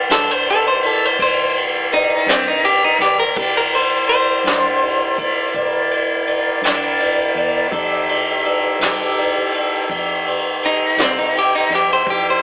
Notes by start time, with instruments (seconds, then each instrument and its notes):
Already playing: tonewheel organ E3 A#4 D5
0.10 fingered electric bass G2, clean electric guitar A4, snare, ride
0.31 clean electric guitar C5
0.46 ride
0.50 clean electric guitar A4
0.68 clean electric guitar C5
0.82 clean electric guitar A4, ride
1.05 clean electric guitar C5
1.19 fingered electric bass C2, clean electric guitar C5, kick, ride
1.56 ride
1.92 clean electric guitar D#4, ride
2.26 fingered electric bass G2, clean electric guitar C4, snare, ride
2.48 clean electric guitar D#4
2.64 clean electric guitar G4, ride
2.84 clean electric guitar D#4
2.99 fingered electric bass C2, clean electric guitar G4, snare, ride
3.20 clean electric guitar A#4
3.36 fingered electric bass C2, tonewheel organ E4 A#4 D5, clean electric guitar G4, kick, ride
3.57 clean electric guitar A#4
3.73 clean electric guitar C5, ride
4.09 clean electric guitar C5, ride
4.44 fingered electric bass G2, snare, ride
4.82 ride
5.18 kick, ride
5.54 fingered electric bass C2, kick, ride
5.91 ride
6.27 ride
6.62 fingered electric bass G2, snare, ride
7.00 ride
7.35 fingered electric bass E2, ride
7.71 fingered electric bass F2, tonewheel organ D#4 G4 A4, kick, ride
8.09 ride
8.45 ride
8.80 fingered electric bass C2, snare, ride
9.17 ride
9.54 ride
9.90 fingered electric bass F2, kick, ride
10.26 ride
10.63 clean electric guitar D#4, ride
10.97 fingered electric bass C2, snare, ride
11.02 clean electric guitar C4
11.19 clean electric guitar D#4
11.35 clean electric guitar G4, ride
11.55 clean electric guitar D#4
11.70 fingered electric bass F2, snare, ride
11.75 clean electric guitar G4
11.93 clean electric guitar C5
12.07 fingered electric bass F2, tonewheel organ D#4 G4 A4, clean electric guitar G4, kick, ride
12.30 clean electric guitar C5